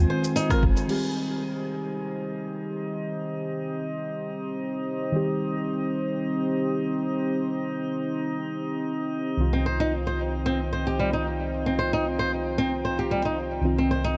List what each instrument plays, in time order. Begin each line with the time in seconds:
Already playing: synth keys D#3 G#3 C4 F4, analog synth pad F4 C5 G#5, synth texture G#4 G#5
0.10 nylon-string guitar C5
0.24 open hi-hat, shaker
0.36 nylon-string guitar D#4, open hi-hat, shaker
0.49 synth keys D#3 G#3 C4 F4, nylon-string guitar A#4, kick, cross-stick, open hi-hat, shaker
0.63 sub bass G1, kick
0.77 open hi-hat, shaker
0.87 synth keys D#3 G3 C4 G4, analog synth pad C4 G4 C5, synth texture D#4 D#5, crash
5.12 synth keys D#3 G3 C4
5.16 synth keys G4
9.37 synth keys C2 D#3 C4 F4, analog synth pad F4 C5 G5
9.53 nylon-string guitar C4
9.66 nylon-string guitar C5
9.80 nylon-string guitar D#4
10.07 nylon-string guitar C5
10.46 nylon-string guitar C4
10.73 nylon-string guitar C5
10.87 nylon-string guitar G4
10.99 nylon-string guitar G3
11.13 nylon-string guitar D#4
11.66 nylon-string guitar C4
11.79 nylon-string guitar C5
11.93 nylon-string guitar D#4
12.19 nylon-string guitar C5
12.58 nylon-string guitar C4
12.85 nylon-string guitar C5
12.99 nylon-string guitar G4
13.11 nylon-string guitar G3
13.25 nylon-string guitar D#4
13.61 synth keys C2 D#3 C4, analog synth pad A#4
13.65 synth keys F4
13.78 nylon-string guitar C4
13.91 nylon-string guitar C5
14.04 nylon-string guitar D#4